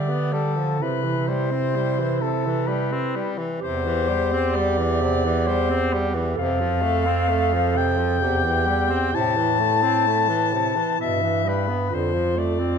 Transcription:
Already playing: bass clarinet D3, tenor saxophone G3, clarinet G4, soprano saxophone D5
0.09 tenor saxophone B3
0.33 tenor saxophone G3, soprano saxophone A4
0.57 tenor saxophone F3
0.79 tenor saxophone C3, bass clarinet C3, clarinet E4, soprano saxophone B4
1.04 tenor saxophone E3
1.27 tenor saxophone G3, soprano saxophone C5
1.51 tenor saxophone C4
1.76 tenor saxophone G3
1.99 tenor saxophone E3
2.21 tenor saxophone C3, soprano saxophone A4
2.46 tenor saxophone E3
2.67 tenor saxophone G3, soprano saxophone B4
2.92 tenor saxophone C4
3.16 tenor saxophone G3
3.38 tenor saxophone E3
3.59 bass clarinet E2, tenor saxophone C3, clarinet G4, soprano saxophone C5
3.85 tenor saxophone E3
4.09 tenor saxophone G3
4.33 tenor saxophone C4
4.54 tenor saxophone G3, soprano saxophone D5
4.78 tenor saxophone E3
5.01 tenor saxophone C3
5.25 tenor saxophone E3
5.47 tenor saxophone G3, soprano saxophone C5
5.70 tenor saxophone C4
5.94 tenor saxophone G3
6.14 tenor saxophone E3
6.35 bass clarinet F2, tenor saxophone C3, clarinet A4, soprano saxophone F5
6.60 tenor saxophone F3
6.82 tenor saxophone A3
7.06 tenor saxophone C4
7.29 tenor saxophone A3
7.53 tenor saxophone F3
7.76 tenor saxophone C3, soprano saxophone G5
7.97 tenor saxophone F3
8.20 bass clarinet E2, tenor saxophone C3, clarinet G4
8.44 tenor saxophone E3
8.67 tenor saxophone G3
8.90 tenor saxophone C4
9.12 bass clarinet A2, tenor saxophone C3, clarinet E4, soprano saxophone A5
9.37 tenor saxophone E3
9.59 tenor saxophone A3
9.82 tenor saxophone C4
10.07 tenor saxophone A3
10.29 tenor saxophone E3
10.53 tenor saxophone C3
10.76 tenor saxophone E3
10.99 bass clarinet G2, tenor saxophone B2, soprano saxophone E5
11.22 tenor saxophone E3
11.45 tenor saxophone G3, soprano saxophone B4
11.69 tenor saxophone B3
11.90 bass clarinet F2, tenor saxophone D3, clarinet F4, soprano saxophone C5
12.13 tenor saxophone F3
12.37 tenor saxophone A3, soprano saxophone D5
12.59 tenor saxophone C4

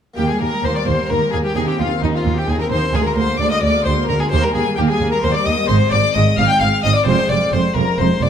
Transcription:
0.14 double bass section D#2, harpsichord A#3 D#4 G4, violin section G4 G5
0.18 cello section D#2, harpsichord D#2, viola section A#3, violin G4
0.29 viola section G3, violin section G#4 G#5, violin G#4
0.40 double bass section D#2, cello section D#2, harpsichord D#2, viola section A#3, violin section A#4 A#5, violin A#4
0.53 viola section G3
0.63 double bass section D#2, cello section D#2, harpsichord D#2, viola section A#3, violin section C5 C6, violin C5
0.74 viola section G3, violin section D5 D6, violin D5
0.86 cello section D#2, harpsichord D#2, double bass section D#2, viola section A#3, violin section C5 C6, violin C5
0.97 viola section G3
1.09 harpsichord D#2, double bass section D#2, cello section D#2, viola section A#3, violin section A#4 A#5, violin A#4
1.21 viola section G3
1.32 cello section D#2, double bass section D#2, harpsichord D#2, viola section A#3, violin G#4, violin section G#4 G#5
1.43 viola section G3, violin G4, violin section G4 G5
1.52 harpsichord C4 D#4 G#4, viola section D#4, violin G#4
1.56 double bass section D#2, cello section D#2, harpsichord D#2, violin section G#4 G#5
1.67 viola section C4, violin G4, violin section G4 G5
1.79 double bass section D#2, cello section D#2, harpsichord D#2, viola section D#4, violin section F4 F5, violin F4
1.91 viola section C4
2.01 double bass section D#2, cello section D#2, harpsichord D#2, viola section D#4, violin section D#4 D#5, violin D#4
2.13 viola section C4, violin section F4 F5, violin F4
2.24 double bass section D#2, cello section D#2, harpsichord D#2, viola section D#4
2.35 viola section C4, violin section G4 G5, violin G4
2.47 double bass section D#2, cello section D#2, harpsichord D#2, viola section D#4, violin section G#4 G#5, violin G#4
2.60 viola section C4, violin section A#4 A#5, violin A#4
2.70 double bass section D#2, cello section D#2, harpsichord D#2, viola section D#4, violin section C5 C6, violin C5
2.83 viola section C4
2.91 double bass section D2, cello section D2, viola section G#3, harpsichord A#3 F4 A#4, violin section G#4 G#5, violin G#4
2.96 harpsichord D2
3.04 viola section A#3, violin section A#4 A#5, violin A#4
3.16 double bass section D2, cello section D2, harpsichord D2, viola section G#3, violin section C5 C6, violin C5
3.29 viola section A#3
3.39 double bass section D2, cello section D2, harpsichord D2, viola section G#3, violin section D5 D6, violin D5
3.51 viola section A#3, violin section D#5 D#6, violin D#5
3.62 cello section D2, double bass section D2, harpsichord D2, viola section G#3, violin section D5 D6, violin D5
3.75 viola section A#3
3.85 cello section D2, double bass section D2, harpsichord D2, viola section G#3, violin C5, violin section C5 C6
3.98 viola section A#3
4.07 cello section D2, double bass section D2, harpsichord D2, viola section G#3, violin section A#4 A#5, violin A#4
4.20 viola section A#3, violin section G#4 G#5, violin G#4
4.29 cello section D#2, double bass section D#2, harpsichord A#3 D#4 G4, violin section C5 C6, violin C5
4.33 harpsichord D#2, viola section A#3
4.43 viola section G3, violin section A#4 A#5, violin A#4
4.53 cello section D#2, double bass section D#2, harpsichord D#2, viola section A#3, violin section G#4 G#5, violin G#4
4.66 viola section G3
4.76 double bass section D#2, cello section D#2, harpsichord D#2, viola section A#3, violin section G4 G5, violin G4
4.88 viola section G3, violin section G#4 G#5, violin G#4
5.00 double bass section D#2, cello section D#2, harpsichord D#2, viola section A#3
5.11 viola section G3, violin section A#4 A#5, violin A#4
5.22 double bass section D#2, cello section D#2, harpsichord D#2, viola section A#3, violin section C5 C6, violin C5
5.34 viola section G3, violin section D5 D6, violin D5
5.45 double bass section D#2, cello section D#2, harpsichord D#2, viola section A#3, violin D#5, violin section D#5 D#6
5.59 viola section G3
5.65 harpsichord G#3 D#4 G#4, violin section C5 C6, violin C5
5.69 double bass section G#1, cello section G#2, harpsichord G#2, viola section G#3
5.91 double bass section G#1, harpsichord G#2, cello section G#2, viola section G#3, violin section D5 D6, violin D5
6.14 double bass section G#1, cello section G#2, harpsichord G#2, viola section G#3, violin section D#5 D#6, violin D#5
6.37 double bass section G#1, harpsichord G#2, cello section G#2, viola section G#3, violin section F5 F6, violin F5
6.48 violin G5, violin section G5 G6
6.59 double bass section G#1, harpsichord G#2, cello section G#2, viola section G#3, violin F5, violin section F5 F6
6.83 double bass section G#1, harpsichord G#2, cello section G#2, viola section G#3, violin D#5, violin section D#5 D#6
6.95 violin D5, violin section D5 D6
7.04 double bass section F1, cello section F2, viola section G#3, harpsichord C4 F4 G#4, violin C5, violin section C6
7.08 harpsichord F2, violin section C5
7.29 double bass section F1, cello section F2, harpsichord F2, viola section G#3, violin D5, violin section D5 D6
7.52 double bass section F1, cello section F2, harpsichord F2, viola section G#3, violin C5, violin section C5 C6
7.75 double bass section F1, cello section F2, harpsichord F2, viola section G#3, violin A#4, violin section A#4 A#5
7.98 double bass section F1, cello section F2, harpsichord F2, viola section G#3, violin C5, violin section C5 C6
8.21 double bass section F1, cello section F2, harpsichord F2, viola section G#3, violin D5, violin section D5 D6

